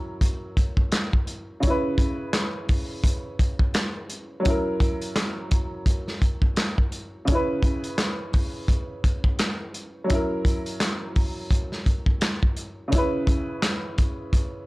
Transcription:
Already playing: F#3 C#4 E4 A#4
0.21 kick, closed hi-hat
0.57 kick, closed hi-hat
0.77 kick
0.92 snare, clap, closed hi-hat
1.13 kick
1.27 closed hi-hat
1.60 C#3 C#4, kick, closed hi-hat
1.67 E4 B4
1.98 kick, closed hi-hat
2.33 snare, clap, closed hi-hat
2.69 kick, open hi-hat
3.04 kick, closed hi-hat
3.39 kick, closed hi-hat
3.59 kick
3.74 snare, clap, closed hi-hat
4.10 closed hi-hat
4.40 F#3 C#4
4.45 E4, kick, closed hi-hat
4.50 A#4
4.80 kick, closed hi-hat
5.01 closed hi-hat
5.16 snare, clap, closed hi-hat
5.51 kick, closed hi-hat
5.86 kick, closed hi-hat
6.08 snare
6.22 kick, closed hi-hat
6.42 kick
6.56 snare, clap, closed hi-hat
6.78 kick
6.92 closed hi-hat
7.25 C#3 C#4, kick, closed hi-hat
7.32 E4 B4
7.63 kick, closed hi-hat
7.84 closed hi-hat
7.98 snare, clap, closed hi-hat
8.33 kick, open hi-hat
8.68 kick, closed hi-hat
9.04 kick, closed hi-hat
9.24 kick
9.39 snare, clap, closed hi-hat
9.74 closed hi-hat
10.04 F#3 C#4
10.10 E4, kick, closed hi-hat
10.14 A#4
10.45 kick, closed hi-hat
10.66 closed hi-hat
10.80 snare, clap, closed hi-hat
11.16 kick, open hi-hat
11.51 kick, closed hi-hat
11.72 snare
11.86 kick, closed hi-hat
12.06 kick
12.21 snare, clap, closed hi-hat
12.43 kick
12.56 closed hi-hat
12.88 C#3 C#4
12.92 E4, kick, closed hi-hat
12.98 B4
13.27 kick, closed hi-hat
13.62 snare, clap, closed hi-hat
13.98 kick, closed hi-hat
14.33 kick, closed hi-hat

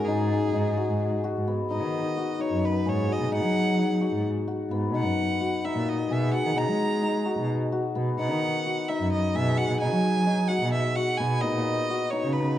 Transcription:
Already playing: C#4 F#4 G#4
0.05 G#2 D#4 G#4
0.54 G#2 D#4
0.77 F#4
0.89 G#2
1.24 F#4
1.36 G#2
1.47 B3
1.70 G#2 D#4 D#5
1.82 D#3
2.17 F#4
2.39 D#4 C#5
2.51 F#2
2.65 B4
2.86 G#2 G#4 C#5
3.08 F#4
3.12 D#5
3.20 B2
3.32 G#2 D#4 F#5
3.43 F#3
3.78 D#4
4.01 F#4
4.13 G#2
4.48 F#4
4.70 G#2 B3
4.93 B2 D#4 F#5
5.05 F#2
5.41 F#4
5.65 D#4 E5
5.75 A#2
5.88 D#5
6.09 B2 G#4 E5
6.33 F#4 F#5
6.45 D#3
6.56 B2 D#4 A#5
6.69 G#3
7.02 D#4
7.25 F#4
7.39 B2
7.72 F#4
7.95 B2 B3
8.19 B2 D#4 F#5
8.31 D#3
8.66 F#4
8.88 D#4 E5
9.00 F#2
9.13 D#5
9.35 B2 G#4 E5
9.58 F#4 F#5
9.69 B2
9.80 B2 D#4 G#5
9.92 F#3
10.27 D#4
10.48 F#4 F#5
10.62 B2
10.73 E5
10.96 F#4 F#5
11.17 B2 B3 G#5
11.41 A#2 D#4 D#5
11.54 A#2
11.90 F#4
12.10 D#4 C#5
12.24 C#3
12.33 B4

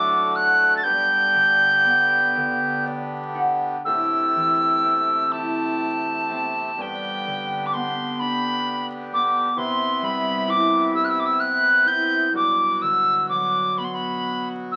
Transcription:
Already playing: A2 D3 F#3 A3 D4 F#4 D6
0.36 F#4 F#6
0.77 A6
0.84 G2 B3 G4 G6
1.34 D3
1.84 B3
2.36 D3
2.86 D5
3.34 D4 F#5
3.85 A2 C3 A3 G4 E6
4.35 E3
4.84 C4
5.32 E4 A5
6.31 C4
6.78 G2 D3 B3 G5
7.26 D3
7.66 D6
7.73 B3 C6
8.20 D4 B5
9.12 B3 D6
9.56 C3 B3 E4 C6
10.02 G3 B5
10.48 E4 D6
10.93 G4 E6
11.05 F#6
11.09 E6
11.20 D6
11.26 E6
11.40 F#6
11.85 E4 G6
12.32 G2 B2 F#3 F#4 D6
12.82 D3 E6
13.29 F#3 D6
13.77 B3 B5
13.84 C6
13.94 B5
14.72 E6

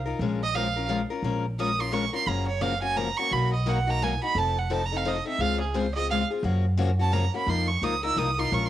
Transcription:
Already playing: C2
0.06 D#4 F4 A#4
0.19 A#1 F3 G#3 C#4 F4 A#4
0.44 D#5
0.55 F3 G#3 C#4 F4 A#4 F5
0.76 C#4 F4 A#4
0.89 F3 G#3 C#4 F4 A#4
1.10 C#4 F4 A#4
1.22 A#1 F3 G#3 C#4 F4 A#4
1.59 F3 G#3 C#4 F4 A#4 D#6
1.79 C#4 F4 A#4 C6
1.92 F3 G#3 C#4 F4 A#4 C#6
2.13 C#4 F4 A#4 C6
2.27 F#1 C#3 F3 A#3 C#4 F#4 A#5
2.48 C#5
2.61 C#3 F3 A#3 C#4 F#4 F5
2.82 A#3 C#4 F#4 G#5
2.97 C#3 F3 A#3 C#4 F#4 A#5
3.17 A#3 C#4 F#4 C#6
3.31 B1 B2 F#3 A#3 D#4 F#4 B5
3.54 D#5
3.66 B2 F#3 A#3 D#4 F#4 F#5
3.87 A#3 D#4 F#4 A#5
4.02 B2 F#3 A#3 D#4 F#4 G#5
4.23 A#3 D#4 F#4 B5
4.35 F1 F3 C4 D#4 A4 A5
4.59 F#5
4.70 F3 C4 D#4 A4 A5
4.86 A#5
4.92 C4 D#4 A4
4.97 F5
5.05 F3 C4 D#4 A4 D#5
5.25 C4 D#4 A4 E5
5.38 C#2 C#3 G#3 C4 F4 G#4 F5
5.61 G#4
5.74 C#3 G#3 C4 F4 G#4 C5
5.95 C4 F4 G#4 D#5
6.10 C#3 G#3 C4 F4 G#4 F5
6.30 C4 F4 G#4
6.43 F#2 C#3 F3 A#3 C#4 F#4
6.78 C#3 F3 A#3 C#4 F#4
6.99 A#3 C#4 F#4 A5
7.12 C#3 F3 A#3 C#4 F#4 A#5
7.34 A#3 C#4 F#4 B5
7.46 F2 F3 A#3 D#4 F4 A#4 C6
7.68 C#6
7.82 C#2 F3 A#3 D#4 F4 A#4 D#6
8.03 D#4 F4 A#4 E6
8.16 C2 F3 A#3 D#4 F4 A#4 D#6
8.38 D#4 F4 A#4 C6
8.51 A#1 F3 G#3 C#4 F4 A#4 C#6
8.66 C6

